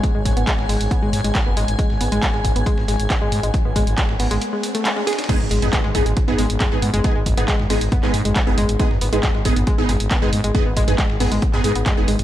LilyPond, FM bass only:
\new Staff \with { instrumentName = "FM bass" } { \clef bass \time 4/4 \key gis \minor \tempo 4 = 137 r16 gis,,16 gis,,16 gis,,16 r16 gis,,16 gis,,16 gis,,16 r16 gis,,16 gis,16 gis,,16 r16 fis,,16 gis,,16 gis,,16 | r16 gis,,16 gis,,16 gis,,16 r16 gis,,16 gis,,16 gis,,16 r16 gis,,16 gis,,16 gis,,16 r16 gis,,16 gis,16 gis,,16 | r16 gis,,16 gis,,16 gis,,16 r16 gis,,16 gis,,16 gis,,16 r2 | r16 gis,,16 gis,,16 gis,,16 r16 gis,,16 gis,,16 gis,,16 r16 gis,,16 gis,,16 gis,,16 r16 gis,,16 gis,16 gis,,16 |
r16 gis,,16 gis,,16 gis,,16 r16 gis,,16 gis,,16 gis,,16 r16 gis,,16 gis,16 gis,,16 r16 fis,,16 gis,,16 gis,,16 | r16 gis,,16 gis,,16 gis,,16 r16 gis,,16 gis,,16 gis,,16 r16 gis,,16 gis,,16 gis,,16 r16 gis,,16 gis,16 gis,,16 | r16 gis,,16 gis,,16 gis,,16 r16 gis,,16 gis,,16 gis,,16 r16 gis,,16 gis,16 gis,,16 r16 fis,,16 gis,,16 gis,,16 | }